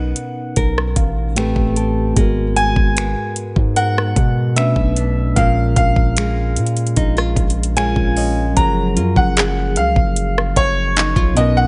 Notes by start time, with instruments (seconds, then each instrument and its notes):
Already playing: 808-style bass B1, tine electric piano B2 B3 C#4 D#4 A#4, nylon-string guitar B3 D#4, grand piano F#5
0.16 closed hi-hat
0.56 808-style bass B1, nylon-string guitar A#4, kick, closed hi-hat
0.78 cross-stick
0.96 808-style bass A1, tine electric piano F5, kick, closed hi-hat
1.35 tine electric piano A2 A3 C4 G4 B4 G5, nylon-string guitar A3, finger snap, closed hi-hat
1.56 808-style bass A1, kick
1.76 nylon-string guitar G4, tine electric piano A5, closed hi-hat
2.13 808-style bass G#1, tine electric piano G#2 G#3 B3, nylon-string guitar G#3, kick, closed hi-hat
2.19 tine electric piano F#4 A#4
2.56 grand piano G#5, closed hi-hat
2.76 808-style bass G#1, kick
2.97 nylon-string guitar B3, finger snap, closed hi-hat
3.36 closed hi-hat
3.56 808-style bass G#2, kick
3.76 nylon-string guitar A#4, grand piano F#5, closed hi-hat
3.98 cross-stick
4.16 808-style bass B2, kick, closed hi-hat
4.55 tine electric piano B2 A3 C#4 D4 B4, nylon-string guitar B2, grand piano E5, finger snap, closed hi-hat
4.76 808-style bass B1, kick
4.96 nylon-string guitar D4, closed hi-hat
5.33 808-style bass A#1, tine electric piano A#2 G#3 C#4, nylon-string guitar A#2, grand piano F5, kick, closed hi-hat
5.39 tine electric piano F4 A#4
5.76 808-style bass A#1, grand piano F5, kick, closed hi-hat
5.96 kick
6.17 nylon-string guitar G#3, finger snap, closed hi-hat
6.56 808-style bass A#2, closed hi-hat
6.67 closed hi-hat
6.77 closed hi-hat
6.87 closed hi-hat
6.96 808-style bass A#1, nylon-string guitar D#4, kick, closed hi-hat
7.17 nylon-string guitar F4, cross-stick
7.36 808-style bass A#1, kick, closed hi-hat
7.50 closed hi-hat
7.63 closed hi-hat
7.75 tine electric piano A#2 G#3 C#4 F4 A#4 F5, nylon-string guitar G#3 C#4 F4, grand piano G#5, finger snap, closed hi-hat
7.96 808-style bass A#1, kick
8.16 nylon-string guitar C#4, tine electric piano D#5, open hi-hat
8.53 808-style bass F#1, tine electric piano F3 F#3 C#4, nylon-string guitar F#3, grand piano A#5, kick, closed hi-hat
8.59 tine electric piano G#4 A#4
8.96 808-style bass F#2, nylon-string guitar F4, closed hi-hat
9.16 808-style bass F#1, grand piano F#5, kick
9.36 nylon-string guitar G#4, clap, closed hi-hat
9.76 808-style bass C#2, grand piano F5, closed hi-hat
9.96 808-style bass F#1, kick
10.16 closed hi-hat
10.38 cross-stick
10.56 808-style bass F#1, grand piano C#5, kick, closed hi-hat
10.96 nylon-string guitar D#4, clap, closed hi-hat
11.16 808-style bass B1, nylon-string guitar F4, kick
11.33 tine electric piano B2 B3 C#4, nylon-string guitar B2, grand piano D#5, closed hi-hat
11.39 tine electric piano D#4 A#4
11.57 grand piano F#5